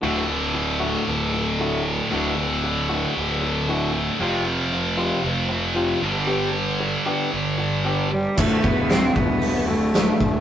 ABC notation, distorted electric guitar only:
X:1
M:4/4
L:1/8
Q:1/4=115
K:G
V:1 name="Distorted electric guitar" clef=bass
[D,,A,,D,]8 | [D,,A,,D,]8 | [=F,,C,=F,]6- [F,,C,F,] [G,,D,G,]- | [G,,D,G,]6- [G,,D,G,] z |
z8 |]